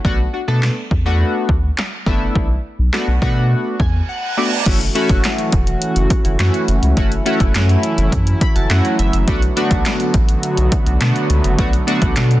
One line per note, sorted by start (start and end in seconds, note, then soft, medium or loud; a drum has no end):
0.05 0.27 B1 loud
0.05 0.18 A3 medium
0.05 0.18 B3 medium
0.05 0.18 D4 medium
0.05 0.18 F#4 loud
0.05 kick loud
0.33 0.40 D4 loud
0.33 0.40 F#4 loud
0.48 0.70 B2 loud
0.48 0.75 A3 medium
0.48 0.75 B3 medium
0.48 0.75 D4 medium
0.48 0.75 A4 medium
0.63 snare medium
0.63 clap loud
0.91 1.24 E2 loud
0.91 kick medium
1.06 1.52 A3 medium
1.06 1.52 B3 medium
1.06 1.53 D4 medium
1.06 1.53 F#4 loud
1.49 1.71 D2 loud
1.49 kick medium
1.78 snare medium
1.78 clap loud
2.06 2.28 F#1 loud
2.06 2.47 A3 medium
2.06 2.47 B3 medium
2.06 2.47 D4 medium
2.06 2.47 E4 loud
2.06 kick medium
2.35 2.57 B1 loud
2.35 kick loud
2.79 2.90 B1 medium
2.93 3.06 A3 medium
2.93 3.07 B3 medium
2.93 3.07 D4 medium
2.93 3.07 F#4 loud
2.93 snare medium
2.93 clap loud
3.08 3.19 B1 medium
3.22 3.55 B2 loud
3.22 3.75 A3 medium
3.22 3.75 B3 medium
3.22 3.76 D4 medium
3.22 3.76 F#4 loud
3.22 kick medium
3.51 reverse cymbal medium
3.80 4.01 E2 medium
3.80 4.07 G#5 medium
3.80 kick medium
4.09 4.36 F#5 medium
4.37 4.51 A3 medium
4.37 4.51 B3 medium
4.37 4.51 D4 medium
4.37 4.51 F#4 medium
4.37 4.64 D5 medium
4.66 4.88 F#1 loud
4.66 9.24 E3 medium
4.66 12.40 F#3 medium
4.66 4.80 A3 medium
4.66 9.24 A3 medium
4.66 9.24 C#4 medium
4.66 4.80 C#4 medium
4.66 4.80 E4 medium
4.66 6.95 F#4 medium
4.66 4.80 F#4 medium
4.66 kick loud
4.66 closed hi-hat medium
4.66 crash loud
4.81 closed hi-hat medium
4.95 5.48 A3 medium
4.95 5.49 C#4 medium
4.95 5.49 E4 medium
4.95 5.49 F#4 loud
4.95 closed hi-hat medium
5.09 5.20 F#1 loud
5.09 kick medium
5.09 closed hi-hat medium
5.24 snare loud
5.24 clap loud
5.24 closed hi-hat medium
5.38 closed hi-hat soft
5.52 5.74 E1 medium
5.52 kick medium
5.52 closed hi-hat medium
5.67 closed hi-hat medium
5.82 closed hi-hat medium
5.96 6.07 F#1 medium
5.96 closed hi-hat medium
6.10 kick medium
6.10 closed hi-hat medium
6.25 6.36 F#1 medium
6.25 6.31 E4 medium
6.25 6.32 F#4 medium
6.25 closed hi-hat soft
6.39 6.50 F#2 loud
6.39 6.66 A3 medium
6.39 6.66 C#4 medium
6.39 6.66 E4 medium
6.39 6.66 F#4 loud
6.39 snare medium
6.39 clap loud
6.39 closed hi-hat medium
6.54 closed hi-hat soft
6.68 6.79 F#1 medium
6.68 closed hi-hat medium
6.83 6.94 C#2 medium
6.83 closed hi-hat medium
6.97 7.19 F#1 loud
6.97 7.10 A3 medium
6.97 7.10 C#4 medium
6.97 9.25 E4 medium
6.97 7.10 E4 medium
6.97 7.11 F#4 medium
6.97 kick loud
6.97 closed hi-hat medium
7.12 closed hi-hat medium
7.25 7.79 A3 medium
7.25 7.79 C#4 medium
7.25 7.79 E4 medium
7.25 7.79 F#4 loud
7.25 closed hi-hat medium
7.40 7.51 F#1 loud
7.40 kick medium
7.40 closed hi-hat medium
7.55 7.76 F#2 loud
7.55 snare loud
7.55 clap loud
7.55 closed hi-hat medium
7.69 closed hi-hat soft
7.83 closed hi-hat medium
7.98 8.09 F#1 medium
7.98 closed hi-hat medium
8.12 8.34 F#2 loud
8.12 kick medium
8.12 closed hi-hat medium
8.27 closed hi-hat medium
8.41 8.55 B5 medium
8.41 kick medium
8.41 closed hi-hat medium
8.55 8.67 F#1 medium
8.55 8.62 E4 medium
8.55 8.62 F#4 medium
8.55 8.69 A5 medium
8.55 closed hi-hat soft
8.70 8.81 F#2 loud
8.70 8.97 A3 medium
8.70 8.97 C#4 medium
8.70 8.97 E4 medium
8.70 8.97 F#4 loud
8.70 8.97 F#5 medium
8.70 snare medium
8.70 clap loud
8.70 closed hi-hat medium
8.85 closed hi-hat soft
8.99 9.10 F#1 loud
8.99 9.26 E5 medium
8.99 closed hi-hat medium
9.13 9.24 F#1 medium
9.13 closed hi-hat medium
9.27 9.49 B1 loud
9.27 12.40 D3 medium
9.27 9.41 A3 medium
9.27 12.40 A3 medium
9.27 9.41 B3 medium
9.27 12.40 B3 medium
9.27 9.41 D4 medium
9.27 9.41 F#4 loud
9.27 12.40 F#4 medium
9.27 kick loud
9.27 closed hi-hat medium
9.42 closed hi-hat medium
9.56 10.10 A3 medium
9.56 10.10 B3 medium
9.56 10.10 D4 medium
9.56 10.10 F#4 loud
9.56 closed hi-hat medium
9.71 9.82 B1 loud
9.71 kick medium
9.71 closed hi-hat medium
9.85 snare loud
9.85 clap loud
9.85 closed hi-hat medium
10.00 closed hi-hat medium
10.14 10.36 A1 loud
10.14 kick medium
10.14 closed hi-hat medium
10.29 closed hi-hat medium
10.43 closed hi-hat medium
10.57 10.69 B1 loud
10.57 closed hi-hat medium
10.72 kick loud
10.72 closed hi-hat medium
10.86 10.97 B1 medium
10.86 10.93 D4 medium
10.86 10.93 F#4 medium
10.86 closed hi-hat soft
11.01 11.12 B2 loud
11.01 11.28 A3 medium
11.01 11.28 B3 medium
11.01 11.28 D4 medium
11.01 11.28 F#4 medium
11.01 snare medium
11.01 clap loud
11.01 closed hi-hat medium
11.16 closed hi-hat soft
11.30 11.41 C#2 loud
11.30 closed hi-hat medium
11.44 11.55 F#1 medium
11.44 closed hi-hat medium
11.58 11.80 B1 loud
11.58 11.72 A3 medium
11.58 11.72 B3 medium
11.58 11.72 D4 medium
11.58 11.72 F#4 loud
11.58 kick loud
11.58 closed hi-hat medium
11.73 closed hi-hat medium
11.87 12.40 A3 loud
11.87 12.40 B3 medium
11.87 12.40 D4 medium
11.87 12.40 F#4 loud
11.87 closed hi-hat medium
12.02 12.13 B1 medium
12.02 kick medium
12.02 closed hi-hat medium
12.16 12.38 B2 loud
12.16 snare medium
12.16 clap loud
12.16 closed hi-hat medium
12.31 closed hi-hat medium